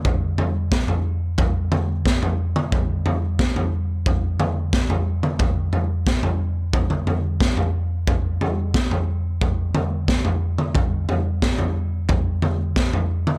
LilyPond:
\new DrumStaff \with { instrumentName = "Drums" } \drummode { \time 4/4 \tempo 4 = 90 <bd tomfh>8 tomfh8 <bd sn>16 tomfh8. <bd tomfh>8 <tomfh toml>8 <bd sn>16 tomfh8 toml16 | <bd tomfh>8 tomfh8 <bd sn>16 tomfh8. <bd tomfh>8 <tomfh toml>8 <bd sn>16 tomfh8 toml16 | <bd tomfh>8 tomfh8 <bd sn>16 tomfh8. <bd tomfh>16 toml16 tomfh8 <bd sn>16 tomfh8. | <bd tomfh>8 tomfh8 <bd sn>16 tomfh8. <bd tomfh>8 <tomfh toml>8 <bd sn>16 tomfh8 toml16 |
<bd tomfh>8 tomfh8 <bd sn>16 tomfh8. <bd tomfh>8 <tomfh toml>8 <bd sn>16 tomfh8 toml16 | }